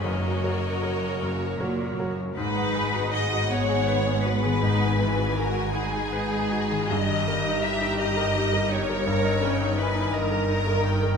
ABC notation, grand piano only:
X:1
M:6/8
L:1/16
Q:3/8=54
K:G#m
V:1 name="Grand piano"
[F,,,F,,]2 [FAc]2 [FAc]2 [F,,,F,,]2 [FAc]2 [FAc]2 | G,, f G F G F f G B G F G | G,, f G F G F f G B G F G | =G,, d A D E D d A D A D A |
=G,, d A D E D d A D A D A |]